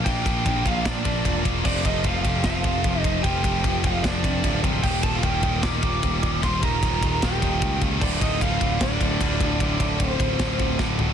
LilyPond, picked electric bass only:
\new Staff \with { instrumentName = "Picked electric bass" } { \clef bass \time 4/4 \key d \phrygian \tempo 4 = 151 bes,,8 bes,,8 bes,,8 bes,,8 bes,,8 bes,,8 e,,4 | f,,8 f,,8 f,,8 f,,8 f,,8 f,,8 f,,4 | f,,8 f,,8 f,,8 f,,8 f,,8 f,,8 d,,4 | ees,,8 ees,,8 ees,,8 ees,,8 ees,,8 ees,,8 ees,,4 |
ees,,8 ees,,8 ees,,8 ees,,8 ees,,8 ees,,8 cis,4 | d,,8 d,,8 d,,8 d,,8 d,,8 d,,8 d,,4 | d,,8 d,,8 d,,8 d,,8 d,,8 d,,8 d,,4 | }